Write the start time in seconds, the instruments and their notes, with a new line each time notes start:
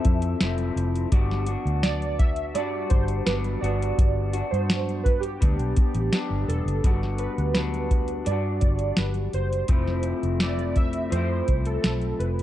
Already playing: clean electric guitar F3 C4 E4 A4, synth keys E5
0.05 fingered electric bass F2, kick, closed hi-hat
0.22 closed hi-hat
0.40 fingered electric bass F1, clean electric guitar F3 C4 E4 A4, snare, closed hi-hat
0.58 closed hi-hat
0.76 fingered electric bass F1, closed hi-hat
0.96 closed hi-hat
1.12 fingered electric bass G1, clean electric guitar G3 B3 D4 F#4, kick, closed hi-hat
1.31 snare
1.46 clean electric guitar B3 D4 F#4, closed hi-hat
1.65 fingered electric bass D2, closed hi-hat
1.83 synth keys D5, snare, closed hi-hat
2.02 closed hi-hat
2.19 synth keys E5, kick, closed hi-hat
2.36 closed hi-hat
2.55 fingered electric bass G2, clean electric guitar G3 D4 F#4, synth keys D5, closed hi-hat
2.89 fingered electric bass G1, synth keys C5, kick, closed hi-hat
3.08 closed hi-hat
3.26 fingered electric bass G1, clean electric guitar G3 B3 D4 F#4, synth keys B4, snare, closed hi-hat
3.44 closed hi-hat
3.61 fingered electric bass G1, clean electric guitar G3 B3 D4 F#4, synth keys D5, closed hi-hat
3.82 closed hi-hat
3.99 fingered electric bass G1, kick, closed hi-hat
4.33 clean electric guitar D4 F#4, closed hi-hat
4.51 fingered electric bass G2, synth keys C5, closed hi-hat
4.70 snare, closed hi-hat
4.89 closed hi-hat
5.03 synth keys B4, kick, closed hi-hat
5.20 synth keys G4, closed hi-hat
5.41 fingered electric bass D2, clean electric guitar G3 B3 D4, kick, closed hi-hat
5.59 fingered electric bass B1, closed hi-hat
5.77 kick, closed hi-hat
5.95 fingered electric bass A1, closed hi-hat
6.13 clean electric guitar G3 B3 D4, snare, closed hi-hat
6.30 fingered electric bass G1
6.48 fingered electric bass E1, synth keys A4, closed hi-hat
6.66 fingered electric bass F#1, closed hi-hat
6.84 fingered electric bass G1, clean electric guitar G3 B3 D4 F#4, kick, closed hi-hat
7.03 snare
7.18 synth keys B4, closed hi-hat
7.38 fingered electric bass D2, closed hi-hat
7.54 clean electric guitar G3 B3 D4, synth keys B4, snare, closed hi-hat
7.58 clean electric guitar F#4
7.74 closed hi-hat
7.91 kick, closed hi-hat
8.08 closed hi-hat
8.25 fingered electric bass G2, clean electric guitar G3, synth keys D5, closed hi-hat
8.30 clean electric guitar D4 F#4
8.60 fingered electric bass G1, synth keys D5, kick, closed hi-hat
8.79 closed hi-hat
8.97 fingered electric bass G1, synth keys B4, snare, closed hi-hat
9.14 closed hi-hat
9.33 fingered electric bass F#1, synth keys C5, closed hi-hat
9.53 closed hi-hat
9.68 fingered electric bass F1, clean electric guitar F3 A3 C4 E4, kick, closed hi-hat
9.88 snare
10.03 closed hi-hat
10.23 fingered electric bass F1, closed hi-hat
10.40 clean electric guitar F3 A3 C4 E4, synth keys D5, snare, closed hi-hat
10.59 closed hi-hat
10.76 synth keys E5, kick, closed hi-hat
10.93 closed hi-hat
11.10 fingered electric bass F2, clean electric guitar F3 A3, synth keys C5, closed hi-hat
11.15 clean electric guitar C4 E4
11.48 fingered electric bass C2, kick, closed hi-hat
11.65 synth keys A4, closed hi-hat
11.82 fingered electric bass B1, synth keys A4, snare, closed hi-hat
12.02 closed hi-hat
12.19 fingered electric bass F1, synth keys B4, closed hi-hat
12.39 closed hi-hat